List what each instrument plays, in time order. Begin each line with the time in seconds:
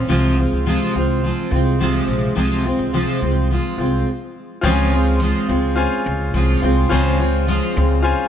0.08 upright bass C2, steel-string acoustic guitar C3 F3 G#3 C4 F4
0.38 steel-string acoustic guitar G#3 C4 F4
0.53 upright bass C#2
0.66 steel-string acoustic guitar C3 F3 G#3 C4 F4
0.95 upright bass C2, steel-string acoustic guitar G#3 C4 F4
1.24 steel-string acoustic guitar F3 G#3 C4 F4
1.51 upright bass C2, steel-string acoustic guitar G#3 C4 F4
1.80 steel-string acoustic guitar C3 F3 G#3 C4 F4
2.07 upright bass A#1
2.35 upright bass C2, steel-string acoustic guitar C3 F3 G#3 C4 F4
2.64 steel-string acoustic guitar G#3 C4 F4
2.79 upright bass C#2
2.93 steel-string acoustic guitar C3 F3 G#3 C4 F4
3.21 upright bass C2, steel-string acoustic guitar G#3 C4 F4
3.50 steel-string acoustic guitar F3 G#3 C4 F4
3.78 upright bass C2, steel-string acoustic guitar G#3 C4 F4
4.61 upright bass C#2, steel-string acoustic guitar C#3 F3 G#3 C4, grand piano F4 C5 C#5 G5
4.66 steel-string acoustic guitar F4
4.70 grand piano G#5
4.92 steel-string acoustic guitar G#3 C4 F4
5.20 steel-string acoustic guitar F3 G#3 C4 F4, tambourine
5.48 upright bass C#2, steel-string acoustic guitar G#3 C4 F4
5.76 grand piano C#4 F4 C5 G#5
6.06 upright bass C#2
6.34 upright bass C2, steel-string acoustic guitar F3 G#3 C4 F4, tambourine
6.62 upright bass C2, steel-string acoustic guitar G#3 C4 F4
6.89 upright bass C#2, steel-string acoustic guitar C#3 F3 G#3 C4 F4, grand piano F4 C5 C#5 G#5
7.19 steel-string acoustic guitar G#3 C4 F4
7.47 steel-string acoustic guitar F3 G#3 C4 F4, tambourine
7.76 upright bass C#2, steel-string acoustic guitar G#3 C4 F4
8.03 grand piano C#4 F4 C5 G#5